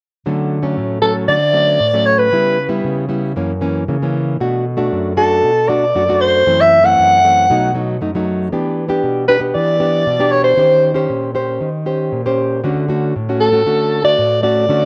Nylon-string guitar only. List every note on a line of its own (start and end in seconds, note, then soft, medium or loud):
0.26 0.75 D3 medium
0.26 0.60 F#3 soft
0.26 0.61 A3 medium
0.26 0.61 C#4 soft
0.62 0.98 F#3 medium
0.62 0.98 A3 medium
0.62 0.98 C#4 medium
0.77 1.26 A2 medium
1.02 1.36 F#3 medium
1.02 1.36 A3 medium
1.02 1.36 C#4 soft
1.28 1.78 D3 medium
1.53 1.78 F#3 soft
1.53 1.79 A3 medium
1.53 1.79 C#4 medium
1.80 2.30 A2 medium
1.94 2.28 F#3 medium
1.94 2.29 A3 medium
1.94 2.29 C#4 medium
2.32 2.82 C#3 medium
2.32 2.57 G3 soft
2.32 2.57 B3 medium
2.32 2.57 E4 medium
2.69 3.05 G3 medium
2.69 3.05 B3 medium
2.69 3.05 E4 medium
2.84 3.33 C#3 medium
3.09 3.33 G3 medium
3.09 3.34 B3 medium
3.09 3.34 E4 medium
3.36 3.85 F#2 medium
3.36 3.51 E3 medium
3.36 3.52 A#3 medium
3.36 3.52 C#4 medium
3.61 3.83 E3 medium
3.61 3.83 A#3 soft
3.61 3.84 C#4 medium
3.88 4.37 C#3 medium
3.88 3.96 E3 soft
3.88 3.96 A#3 medium
3.88 3.96 C#4 soft
4.02 4.36 E3 medium
4.02 4.36 A#3 medium
4.02 4.37 C#4 medium
4.40 4.89 B2 medium
4.40 4.64 A3 soft
4.40 4.64 D4 soft
4.40 4.64 F#4 medium
4.77 5.12 A3 medium
4.77 5.12 D4 medium
4.77 5.13 F#4 medium
4.92 5.41 F#2 medium
5.16 5.50 A3 medium
5.16 5.50 D4 medium
5.16 5.50 F#4 medium
5.43 5.92 B2 medium
5.68 5.84 A3 soft
5.68 5.84 D4 medium
5.68 5.84 F#4 medium
5.95 6.44 F#2 medium
5.95 6.02 A3 medium
5.95 6.03 D4 soft
5.95 6.03 F#4 medium
6.09 6.42 A3 medium
6.09 6.43 D4 medium
6.09 6.43 F#4 medium
6.46 6.95 F#2 medium
6.46 6.81 E3 soft
6.46 6.81 A3 soft
6.46 6.81 C4 medium
6.83 7.18 E3 medium
6.83 7.19 A3 medium
6.83 7.19 C4 medium
6.99 7.47 F#2 medium
7.24 7.47 E3 medium
7.24 7.48 A3 medium
7.24 7.48 C4 medium
7.50 7.99 B2 medium
7.50 7.71 F#3 medium
7.50 7.71 A3 medium
7.50 7.72 D#4 medium
7.75 7.96 F#3 medium
7.75 7.97 A3 soft
7.75 7.97 D#4 medium
8.01 8.50 F#2 medium
8.01 8.10 F#3 soft
8.01 8.10 A3 medium
8.01 8.10 D#4 medium
8.15 8.49 F#3 medium
8.15 8.49 A3 soft
8.15 8.49 D#4 medium
8.52 9.01 E3 medium
8.52 8.87 B3 medium
8.52 8.87 D4 soft
8.52 8.87 G4 medium
8.89 9.24 B3 medium
8.89 9.24 D4 medium
8.89 9.25 G4 medium
9.04 9.52 B2 medium
9.28 9.38 B3 medium
9.28 9.38 D4 soft
9.28 9.38 G4 medium
9.40 9.75 B3 medium
9.40 9.76 D4 medium
9.40 9.76 G4 medium
9.55 10.04 E3 medium
9.80 10.04 B3 medium
9.80 10.04 D4 soft
9.80 10.05 G4 medium
10.06 10.55 B2 medium
10.19 10.54 B3 medium
10.19 10.54 D4 medium
10.19 10.54 G4 medium
10.57 11.06 D#3 medium
10.57 10.92 C#4 medium
10.57 10.92 G4 medium
10.57 10.92 C5 medium
10.94 11.30 C#4 medium
10.94 11.30 G4 medium
10.94 11.30 C5 medium
11.09 11.58 A#2 medium
11.34 11.68 C#4 medium
11.34 11.68 G4 soft
11.34 11.68 C5 medium
11.61 12.09 D#3 medium
11.86 12.20 C#4 soft
11.86 12.21 G4 medium
11.86 12.21 C5 medium
12.12 12.61 A#2 medium
12.25 12.60 C#4 medium
12.25 12.60 G4 medium
12.25 12.60 C5 medium
12.63 13.12 D3 medium
12.63 12.85 A3 medium
12.63 12.85 C#4 medium
12.63 12.85 F#4 soft
12.88 13.13 A3 medium
12.88 13.13 C#4 medium
12.88 13.13 F#4 medium
13.16 13.64 A2 medium
13.29 13.50 A3 medium
13.29 13.50 C#4 medium
13.29 13.50 F#4 medium
13.52 13.62 A3 medium
13.52 13.62 C#4 medium
13.52 13.62 F#4 medium
13.66 14.15 D3 medium
13.66 14.01 A3 medium
13.66 14.01 C#4 medium
13.66 14.01 F#4 medium
14.03 14.39 A3 medium
14.03 14.39 F#4 medium
14.18 14.67 A2 medium
14.43 14.65 A3 medium
14.43 14.65 C#4 soft
14.43 14.65 F#4 medium
14.69 14.85 D3 medium
14.69 14.85 A3 medium
14.69 14.85 C#4 medium
14.69 14.85 F#4 medium